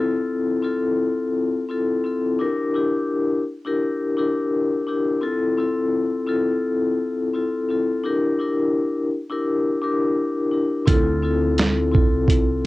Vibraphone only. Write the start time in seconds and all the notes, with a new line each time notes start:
Already playing: C4 E4 F4 A4
0.62 C4 E4 F4 A4
1.69 C4 E4 F4 A4
2.04 C4 E4 F4 A4
2.39 D4 E4 G4 A#4
2.74 D4 E4 G4 A#4
3.65 D4 E4 G4 A#4
4.17 D4 E4 G4 A#4
4.87 D4 E4 G4 A#4
5.21 C4 E4 F4 A4
5.58 C4 E4 F4 A4
6.27 C4 E4 F4 A4
7.34 C4 E4 F4 A4
7.69 C4 E4 F4 A4
8.04 D4 E4 G4 A#4
8.39 D4 E4 G4 A#4
9.30 D4 E4 G4 A#4
9.81 D4 E4 G4 A#4
10.51 D4 E4 G4 A#4
10.86 C4 E4 F4 A4
11.22 C4 E4 F4 A4
11.91 C4 E4 F4 A4